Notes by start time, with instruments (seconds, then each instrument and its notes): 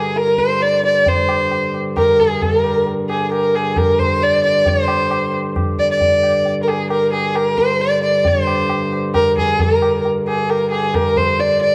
Already playing: harmonium G2 D3, violin G#4
0.16 violin A#4, tabla te
0.27 tabla te
0.38 violin C5, tabla ke
0.49 tabla te
0.60 violin D5, tabla te
0.84 violin D5, tabla te
1.06 harmonium G2 D3, violin C5, tabla tin, tabla ge
1.29 tabla na
1.51 tabla na
1.74 tabla na
1.97 violin A#4, tabla na, tabla ge
2.19 violin G#4, tabla ge
2.42 violin A#4, tabla tin, tabla ge
2.64 tabla na
2.87 tabla tin
3.09 violin G#4, tabla na
3.32 violin A#4, tabla na
3.55 violin G#4, tabla na
3.76 violin A#4, tabla na, tabla ge
3.99 violin C5, tabla ge
4.21 violin D5, tabla te
4.44 violin D5, tabla te
4.66 violin C5, tabla tin, tabla ge
4.88 tabla na
5.11 tabla na
5.34 tabla na
5.56 tabla na, tabla ge
5.78 violin D5, tabla ge
5.91 violin D5
6.01 tabla tin, tabla ge
6.23 tabla na
6.46 tabla tin
6.63 violin A#4
6.68 violin G#4, tabla na
6.90 violin A#4, tabla na
7.13 violin G#4, tabla na
7.35 violin A#4, tabla na
7.57 violin C5, tabla ke
7.80 violin D5, tabla te
8.03 violin D5, tabla te
8.25 harmonium G2 D3, violin C5, tabla tin, tabla ge
8.47 tabla na
8.70 tabla na
8.93 tabla na
9.14 violin A#4, tabla na, tabla ge
9.38 violin G#4, tabla ge
9.59 violin A#4, tabla tin, tabla ge
9.82 tabla na
10.05 tabla tin
10.27 violin G#4, tabla na
10.49 violin A#4, tabla na
10.71 violin G#4, tabla na
10.94 violin A#4, tabla na, tabla ge
11.16 violin C5, tabla ge
11.39 violin D5, tabla te
11.61 violin D5, tabla te